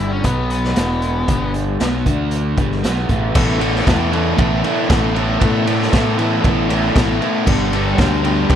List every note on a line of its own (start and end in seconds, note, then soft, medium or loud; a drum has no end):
0.00 0.21 G1 medium
0.00 0.24 G2 medium
0.00 0.24 D3 medium
0.00 0.24 G3 medium
0.00 0.24 D4 medium
0.00 0.11 E4 medium
0.00 0.24 G4 medium
0.00 0.24 D5 medium
0.00 0.24 G5 medium
0.11 0.25 C#4 medium
0.24 0.73 B1 medium
0.24 0.76 B2 medium
0.24 0.76 F#3 medium
0.24 0.50 B3 medium
0.24 0.76 B3 medium
0.24 0.75 B3 medium
0.24 0.77 F#4 medium
0.24 0.75 B4 medium
0.24 0.77 F#5 medium
0.24 kick loud
0.24 closed hi-hat medium
0.50 1.51 B3 medium
0.50 closed hi-hat medium
0.64 snare soft
0.76 1.25 E1 medium
0.76 1.28 E2 medium
0.76 1.28 B2 medium
0.76 1.28 E3 loud
0.76 1.28 B3 medium
0.76 1.28 E4 medium
0.76 1.28 G#4 medium
0.76 1.28 B4 medium
0.76 snare loud
0.76 closed hi-hat medium
1.02 closed hi-hat medium
1.28 1.77 G1 medium
1.28 1.79 G2 medium
1.28 1.80 D3 loud
1.28 1.80 G3 medium
1.28 1.80 G3 loud
1.28 1.80 D4 medium
1.28 1.80 G4 medium
1.28 1.80 D5 medium
1.28 kick loud
1.28 closed hi-hat medium
1.54 closed hi-hat medium
1.80 2.05 B1 medium
1.80 2.05 B2 loud
1.80 2.06 F#3 medium
1.80 2.06 B3 medium
1.80 snare loud
1.80 closed hi-hat medium
2.05 2.54 D2 medium
2.05 2.57 D3 medium
2.05 2.57 A3 medium
2.05 2.57 D4 medium
2.05 2.57 A4 medium
2.05 2.57 D5 medium
2.05 kick loud
2.05 closed hi-hat medium
2.31 closed hi-hat medium
2.57 2.82 G1 medium
2.57 2.83 G2 medium
2.57 2.83 D3 medium
2.57 2.84 G3 medium
2.57 3.34 B3 medium
2.57 3.34 E4 medium
2.57 3.35 G#4 medium
2.57 3.34 B4 medium
2.57 kick loud
2.57 closed hi-hat medium
2.72 snare soft
2.84 3.08 B1 medium
2.84 3.08 B2 medium
2.84 3.09 F#3 medium
2.84 3.09 B3 medium
2.84 snare loud
2.84 closed hi-hat medium
3.08 3.33 A1 medium
3.08 3.33 A2 medium
3.08 3.33 E3 medium
3.08 3.35 A3 medium
3.08 kick medium
3.08 closed hi-hat medium
3.34 3.81 A1 loud
3.34 3.59 A2 medium
3.34 3.60 E3 medium
3.34 3.61 A3 loud
3.34 3.60 B3 loud
3.34 3.61 E4 loud
3.34 3.61 A4 loud
3.34 kick loud
3.34 crash loud
3.59 3.86 A2 medium
3.59 3.86 E3 medium
3.59 3.87 A3 medium
3.59 3.87 B3 medium
3.59 3.87 E4 medium
3.59 3.87 A4 medium
3.59 ride medium
3.75 snare soft
3.86 4.33 E2 medium
3.86 4.11 A2 medium
3.86 4.12 E3 medium
3.86 4.12 A3 loud
3.86 4.12 B3 medium
3.86 4.13 E4 medium
3.86 4.13 A4 loud
3.86 kick loud
3.86 snare loud
3.86 ride loud
4.12 4.36 A2 medium
4.12 4.36 E3 loud
4.12 4.37 A3 loud
4.12 4.38 B3 medium
4.12 4.37 E4 loud
4.12 4.38 A4 loud
4.12 ride medium
4.37 4.61 A1 medium
4.37 4.62 A2 medium
4.37 4.63 E3 medium
4.37 4.63 A3 medium
4.37 4.64 B3 medium
4.37 4.63 E4 medium
4.37 4.64 A4 loud
4.37 kick loud
4.37 ride loud
4.63 4.89 A2 medium
4.63 4.89 E3 medium
4.63 4.88 A3 medium
4.63 4.91 B3 medium
4.63 4.90 E4 medium
4.63 4.91 A4 medium
4.63 ride medium
4.90 5.36 A1 loud
4.90 5.14 A2 loud
4.90 5.15 E3 loud
4.90 5.14 A3 loud
4.90 5.15 B3 loud
4.90 5.15 E4 medium
4.90 5.16 A4 loud
4.90 kick loud
4.90 snare loud
4.90 ride loud
5.15 5.39 A2 medium
5.15 5.40 E3 medium
5.15 5.39 A3 loud
5.15 5.41 B3 medium
5.15 5.41 E4 medium
5.15 5.41 A4 medium
5.15 ride medium
5.40 5.65 A2 medium
5.40 5.87 A2 loud
5.40 5.66 E3 loud
5.40 5.65 A3 loud
5.40 5.67 B3 loud
5.40 5.66 E4 loud
5.40 5.67 A4 loud
5.40 kick loud
5.40 ride loud
5.66 5.91 A2 medium
5.66 5.91 E3 medium
5.66 5.92 A3 medium
5.66 5.93 B3 medium
5.66 5.93 E4 loud
5.66 5.93 A4 loud
5.66 ride medium
5.82 snare soft
5.92 6.16 A2 medium
5.92 6.39 A2 medium
5.92 6.17 E3 medium
5.92 6.17 A3 loud
5.92 6.18 B3 medium
5.92 6.18 E4 medium
5.92 6.18 A4 loud
5.92 kick loud
5.92 snare loud
5.92 ride loud
6.18 6.43 A2 medium
6.18 6.44 E3 medium
6.18 6.43 A3 loud
6.18 6.44 B3 loud
6.18 6.44 E4 medium
6.18 6.45 A4 loud
6.18 ride medium
6.44 6.90 A1 medium
6.44 6.68 A2 medium
6.44 6.68 E3 medium
6.44 6.69 A3 loud
6.44 6.70 B3 medium
6.44 6.70 E4 medium
6.44 6.70 A4 medium
6.44 kick loud
6.44 ride loud
6.69 6.93 A2 medium
6.69 6.94 E3 medium
6.69 6.94 A3 medium
6.69 6.95 B3 medium
6.69 6.95 E4 medium
6.69 6.95 A4 loud
6.69 ride medium
6.94 7.18 A1 medium
6.94 7.19 A2 medium
6.94 7.20 E3 loud
6.94 7.20 A3 loud
6.94 7.21 B3 loud
6.94 7.21 E4 loud
6.94 7.21 A4 loud
6.94 kick loud
6.94 snare loud
6.94 ride loud
7.20 7.45 A2 medium
7.20 7.45 E3 medium
7.20 7.45 A3 medium
7.20 7.47 B3 medium
7.20 7.46 E4 medium
7.20 7.46 A4 medium
7.20 ride medium
7.46 7.93 G1 loud
7.46 7.71 G2 loud
7.46 7.71 D3 loud
7.46 7.73 G3 loud
7.46 7.73 B3 loud
7.46 7.73 D4 loud
7.46 7.74 G4 loud
7.46 kick loud
7.46 crash loud
7.72 7.97 G2 medium
7.72 7.97 D3 medium
7.72 7.98 G3 loud
7.72 7.98 B3 medium
7.72 7.99 D4 medium
7.72 7.99 G4 medium
7.72 ride medium
7.97 8.44 D2 loud
7.97 8.23 G2 medium
7.97 8.23 D3 medium
7.97 8.24 G3 medium
7.97 8.25 B3 medium
7.97 8.25 D4 medium
7.97 8.25 G4 loud
7.97 kick loud
7.97 snare loud
7.97 ride loud
8.24 8.47 G2 medium
8.24 8.48 D3 loud
8.24 8.48 G3 loud
8.24 8.50 B3 loud
8.24 8.49 D4 loud
8.24 8.50 G4 loud
8.24 ride medium
8.48 8.55 G1 medium
8.48 8.55 G2 medium
8.48 8.55 D3 medium
8.48 8.55 G3 medium
8.48 8.55 B3 medium
8.48 8.55 D4 medium
8.48 8.55 G4 medium
8.48 kick loud
8.48 ride loud